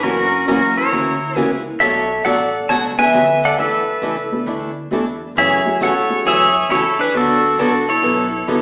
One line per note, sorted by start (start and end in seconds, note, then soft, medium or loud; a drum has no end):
0.02 0.46 F#2 medium
0.02 0.25 C#3 medium
0.02 0.25 E3 medium
0.02 0.25 A#3 medium
0.02 0.44 C#4 medium
0.02 0.25 C#4 medium
0.02 0.26 F#4 medium
0.02 0.45 F#4 medium
0.02 0.47 A#4 medium
0.47 0.91 E2 medium
0.47 0.59 C#3 medium
0.47 0.59 E3 medium
0.47 0.73 F#3 medium
0.47 0.59 A#3 medium
0.47 0.74 A#3 medium
0.47 0.74 C#4 medium
0.47 0.59 C#4 medium
0.47 0.75 C#4 medium
0.47 0.74 E4 medium
0.47 0.59 F#4 medium
0.47 0.74 F#4 medium
0.47 0.75 F#4 medium
0.47 0.75 A#4 medium
0.77 1.62 E4 medium
0.77 1.38 A#4 medium
0.77 1.37 C#5 medium
0.91 1.35 D2 medium
0.91 1.14 C#3 medium
0.91 1.14 E3 medium
0.91 1.14 A#3 medium
0.91 1.14 C#4 medium
0.91 1.15 F#4 medium
1.36 1.79 C#2 medium
1.36 1.48 C#3 medium
1.36 1.48 E3 medium
1.36 1.48 A#3 medium
1.36 1.48 C#4 medium
1.36 1.48 F#4 medium
1.36 1.62 G#4 medium
1.36 1.62 B4 medium
1.80 2.24 B1 medium
1.80 2.03 B2 medium
1.80 2.03 F#3 medium
1.80 2.03 A3 medium
1.80 2.03 D4 medium
1.80 2.03 F#4 medium
1.80 2.22 A4 medium
1.80 2.22 C#5 medium
1.80 2.22 E5 medium
2.24 2.68 A1 medium
2.24 2.36 B2 medium
2.24 2.37 F#3 medium
2.24 2.37 A3 medium
2.24 2.37 D4 medium
2.24 2.37 F#4 medium
2.24 2.67 A4 medium
2.24 2.66 D5 medium
2.24 2.71 F#5 medium
2.69 3.13 C#2 medium
2.69 2.91 B2 medium
2.69 2.92 F#3 medium
2.69 2.92 A3 medium
2.69 2.92 D4 medium
2.69 2.92 F#4 medium
2.69 2.78 C#5 medium
2.69 2.83 F#5 loud
2.69 2.77 A5 loud
2.98 3.55 B3 medium
2.98 3.55 C#4 medium
2.98 3.55 D4 medium
2.98 3.55 E4 medium
2.98 3.55 A4 medium
2.98 3.40 B4 medium
2.98 3.40 E5 medium
2.98 3.40 G#5 loud
3.13 3.57 D2 medium
3.13 3.25 B2 medium
3.13 3.26 F#3 medium
3.13 3.26 A3 medium
3.13 3.26 D4 medium
3.13 3.26 F#4 medium
3.44 3.58 A4 medium
3.44 3.58 D5 medium
3.44 3.59 F#5 medium
3.57 3.85 E2 medium
3.57 3.80 E3 medium
3.57 3.80 A3 medium
3.57 3.81 D4 medium
3.57 3.81 E4 medium
3.57 3.81 A4 medium
3.57 4.44 A4 medium
3.57 4.44 B4 medium
3.57 4.44 E5 medium
3.86 muted upright bass stroke soft
4.02 4.46 C#2 medium
4.02 4.14 E3 medium
4.02 4.15 A3 medium
4.02 4.15 D4 medium
4.02 4.15 E4 medium
4.02 4.15 A4 medium
4.32 4.46 A3 medium
4.32 4.46 B3 medium
4.32 4.46 D4 medium
4.32 4.46 E4 medium
4.32 4.46 A4 medium
4.46 4.90 D2 medium
4.46 4.69 E3 medium
4.46 4.69 A3 medium
4.46 4.70 D4 medium
4.46 4.70 E4 medium
4.46 4.70 A4 medium
4.91 5.34 E2 medium
4.91 5.04 E3 medium
4.91 5.18 A3 medium
4.91 5.04 A3 medium
4.91 5.18 B3 medium
4.91 5.18 D4 medium
4.91 5.04 D4 medium
4.91 5.18 E4 medium
4.91 5.04 E4 medium
4.91 5.18 A4 medium
4.91 5.04 A4 medium
5.35 5.79 F#2 medium
5.35 5.58 C#3 medium
5.35 5.59 E3 medium
5.35 5.59 A3 medium
5.35 5.59 C#4 medium
5.35 5.59 F#4 medium
5.35 5.79 G#4 medium
5.35 5.78 C#5 medium
5.35 5.83 E5 loud
5.65 5.79 A3 medium
5.65 5.79 C#4 medium
5.65 5.79 E4 medium
5.65 5.79 F#4 medium
5.65 5.80 G#4 medium
5.80 6.24 G#2 medium
5.80 5.92 C#3 medium
5.80 5.93 E3 medium
5.80 5.93 A3 medium
5.80 5.93 C#4 medium
5.80 5.93 F#4 medium
5.80 6.23 A4 medium
5.80 6.23 C#5 medium
5.80 6.23 F#5 medium
6.10 6.24 A3 medium
6.10 6.24 C#4 medium
6.10 6.24 E4 medium
6.10 6.24 F#4 medium
6.10 6.24 G#4 medium
6.25 6.68 F#2 medium
6.25 6.47 C#3 medium
6.25 6.48 E3 medium
6.25 6.48 A3 medium
6.25 6.48 C#4 medium
6.25 6.48 F#4 medium
6.25 6.67 G#4 medium
6.25 6.67 C#5 medium
6.25 6.72 E5 loud
6.69 7.13 E2 medium
6.69 6.82 C#3 medium
6.69 6.82 E3 medium
6.69 6.82 A3 medium
6.69 6.82 C#4 medium
6.69 6.97 E4 medium
6.69 6.82 F#4 medium
6.69 6.97 A4 medium
6.69 6.98 C#5 medium
6.99 7.13 D4 medium
6.99 7.15 G#4 medium
6.99 7.16 B4 medium
7.13 7.58 D2 medium
7.13 7.36 D3 medium
7.13 7.36 F#3 medium
7.13 7.36 B3 medium
7.13 7.57 D4 medium
7.13 7.36 F#4 medium
7.13 7.57 F#4 medium
7.13 7.37 A4 medium
7.13 7.57 A4 medium
7.58 8.02 C#2 medium
7.58 7.70 D3 medium
7.58 7.70 F#3 medium
7.58 7.70 B3 medium
7.58 7.86 D4 medium
7.58 7.71 F#4 medium
7.58 7.87 F#4 medium
7.58 7.71 A4 medium
7.58 7.90 A4 medium
7.89 8.62 E4 medium
7.89 8.62 A4 medium
7.89 8.62 C#5 medium
8.02 8.46 B1 medium
8.02 8.25 D3 medium
8.02 8.25 F#3 medium
8.02 8.25 B3 medium
8.02 8.25 F#4 medium
8.02 8.26 A4 medium
8.47 8.62 A1 medium
8.47 8.59 D3 medium
8.47 8.60 F#3 medium
8.47 8.62 B3 medium
8.47 8.60 B3 medium
8.47 8.62 D4 medium
8.47 8.62 E4 medium
8.47 8.62 F#4 medium
8.47 8.60 F#4 medium
8.47 8.62 A4 medium
8.47 8.60 A4 medium